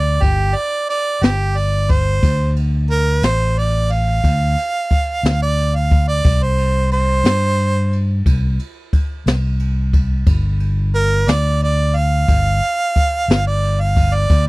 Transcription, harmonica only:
0, 0, Header, 1, 2, 480
1, 0, Start_track
1, 0, Tempo, 669643
1, 1597, Time_signature, 12, 3, 24, 8
1, 10385, End_track
2, 0, Start_track
2, 0, Title_t, "Harmonica"
2, 0, Program_c, 0, 22
2, 0, Note_on_c, 0, 74, 80
2, 163, Note_on_c, 0, 67, 83
2, 174, Note_off_c, 0, 74, 0
2, 401, Note_on_c, 0, 74, 90
2, 411, Note_off_c, 0, 67, 0
2, 632, Note_off_c, 0, 74, 0
2, 641, Note_on_c, 0, 74, 98
2, 883, Note_on_c, 0, 67, 87
2, 894, Note_off_c, 0, 74, 0
2, 1125, Note_on_c, 0, 74, 82
2, 1136, Note_off_c, 0, 67, 0
2, 1367, Note_on_c, 0, 72, 90
2, 1378, Note_off_c, 0, 74, 0
2, 1828, Note_off_c, 0, 72, 0
2, 2084, Note_on_c, 0, 70, 88
2, 2313, Note_off_c, 0, 70, 0
2, 2323, Note_on_c, 0, 72, 92
2, 2566, Note_on_c, 0, 74, 79
2, 2577, Note_off_c, 0, 72, 0
2, 2805, Note_on_c, 0, 77, 88
2, 2816, Note_off_c, 0, 74, 0
2, 3852, Note_off_c, 0, 77, 0
2, 3886, Note_on_c, 0, 74, 90
2, 4126, Note_on_c, 0, 77, 77
2, 4137, Note_off_c, 0, 74, 0
2, 4352, Note_off_c, 0, 77, 0
2, 4357, Note_on_c, 0, 74, 89
2, 4604, Note_on_c, 0, 72, 85
2, 4615, Note_off_c, 0, 74, 0
2, 4950, Note_off_c, 0, 72, 0
2, 4963, Note_on_c, 0, 72, 114
2, 5892, Note_off_c, 0, 72, 0
2, 7849, Note_on_c, 0, 70, 98
2, 8095, Note_on_c, 0, 74, 98
2, 8105, Note_off_c, 0, 70, 0
2, 8320, Note_off_c, 0, 74, 0
2, 8335, Note_on_c, 0, 74, 95
2, 8578, Note_on_c, 0, 77, 101
2, 8589, Note_off_c, 0, 74, 0
2, 9622, Note_off_c, 0, 77, 0
2, 9655, Note_on_c, 0, 74, 86
2, 9895, Note_on_c, 0, 77, 90
2, 9906, Note_off_c, 0, 74, 0
2, 10139, Note_on_c, 0, 74, 86
2, 10150, Note_off_c, 0, 77, 0
2, 10364, Note_off_c, 0, 74, 0
2, 10385, End_track
0, 0, End_of_file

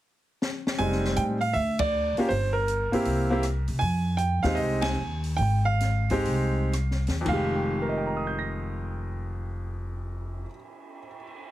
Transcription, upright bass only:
0, 0, Header, 1, 3, 480
1, 0, Start_track
1, 0, Key_signature, -4, "minor"
1, 0, Tempo, 377834
1, 1001, Time_signature, 4, 2, 24, 8
1, 5321, Tempo, 390625
1, 6281, Tempo, 418994
1, 7241, Tempo, 465839
1, 8201, Tempo, 516796
1, 8681, Tempo, 537153
1, 12484, End_track
2, 0, Start_track
2, 0, Title_t, "Upright bass"
2, 0, Program_c, 0, 32
2, 1003, Note_on_c, 0, 29, 77
2, 1448, Note_off_c, 0, 29, 0
2, 1486, Note_on_c, 0, 45, 66
2, 1930, Note_off_c, 0, 45, 0
2, 1965, Note_on_c, 0, 38, 80
2, 2707, Note_off_c, 0, 38, 0
2, 2920, Note_on_c, 0, 31, 77
2, 3665, Note_off_c, 0, 31, 0
2, 3880, Note_on_c, 0, 36, 77
2, 4624, Note_off_c, 0, 36, 0
2, 4677, Note_on_c, 0, 48, 69
2, 4829, Note_off_c, 0, 48, 0
2, 4842, Note_on_c, 0, 41, 83
2, 5584, Note_off_c, 0, 41, 0
2, 5625, Note_on_c, 0, 39, 73
2, 5781, Note_off_c, 0, 39, 0
2, 5790, Note_on_c, 0, 36, 75
2, 6245, Note_off_c, 0, 36, 0
2, 6287, Note_on_c, 0, 39, 73
2, 6721, Note_off_c, 0, 39, 0
2, 6757, Note_on_c, 0, 32, 85
2, 7668, Note_off_c, 0, 32, 0
2, 7707, Note_on_c, 0, 36, 79
2, 8475, Note_off_c, 0, 36, 0
2, 8516, Note_on_c, 0, 39, 69
2, 8671, Note_off_c, 0, 39, 0
2, 8681, Note_on_c, 0, 29, 83
2, 11520, Note_off_c, 0, 29, 0
2, 12484, End_track
3, 0, Start_track
3, 0, Title_t, "Muted upright bass strokes"
3, 2758, Note_on_c, 9, 29, 38
3, 2885, Note_off_c, 9, 29, 0
3, 3717, Note_on_c, 9, 29, 39
3, 3844, Note_off_c, 9, 29, 0
3, 12484, End_track
0, 0, End_of_file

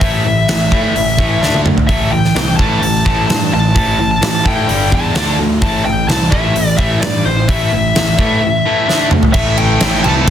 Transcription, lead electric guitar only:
0, 0, Header, 1, 2, 480
1, 0, Start_track
1, 0, Key_signature, 0, "minor"
1, 0, Tempo, 466563
1, 21, Time_signature, 4, 2, 24, 8
1, 10597, End_track
2, 0, Start_track
2, 0, Title_t, "Lead electric guitar"
2, 0, Program_c, 0, 29
2, 0, Note_on_c, 0, 76, 83
2, 1638, Note_off_c, 0, 76, 0
2, 1926, Note_on_c, 0, 76, 96
2, 2169, Note_on_c, 0, 79, 95
2, 2183, Note_off_c, 0, 76, 0
2, 2623, Note_off_c, 0, 79, 0
2, 2640, Note_on_c, 0, 81, 98
2, 3630, Note_off_c, 0, 81, 0
2, 3643, Note_on_c, 0, 81, 95
2, 4217, Note_off_c, 0, 81, 0
2, 4229, Note_on_c, 0, 81, 97
2, 4563, Note_off_c, 0, 81, 0
2, 4608, Note_on_c, 0, 79, 89
2, 5082, Note_off_c, 0, 79, 0
2, 5087, Note_on_c, 0, 81, 93
2, 5524, Note_off_c, 0, 81, 0
2, 5784, Note_on_c, 0, 81, 101
2, 6015, Note_off_c, 0, 81, 0
2, 6019, Note_on_c, 0, 79, 99
2, 6246, Note_off_c, 0, 79, 0
2, 6258, Note_on_c, 0, 81, 90
2, 6486, Note_off_c, 0, 81, 0
2, 6490, Note_on_c, 0, 76, 85
2, 6944, Note_off_c, 0, 76, 0
2, 6973, Note_on_c, 0, 76, 89
2, 7207, Note_off_c, 0, 76, 0
2, 7211, Note_on_c, 0, 74, 94
2, 7442, Note_off_c, 0, 74, 0
2, 7462, Note_on_c, 0, 72, 77
2, 7696, Note_on_c, 0, 76, 90
2, 7711, Note_off_c, 0, 72, 0
2, 9338, Note_off_c, 0, 76, 0
2, 9600, Note_on_c, 0, 76, 104
2, 9852, Note_on_c, 0, 79, 103
2, 9859, Note_off_c, 0, 76, 0
2, 10330, Note_off_c, 0, 79, 0
2, 10334, Note_on_c, 0, 81, 98
2, 10581, Note_off_c, 0, 81, 0
2, 10597, End_track
0, 0, End_of_file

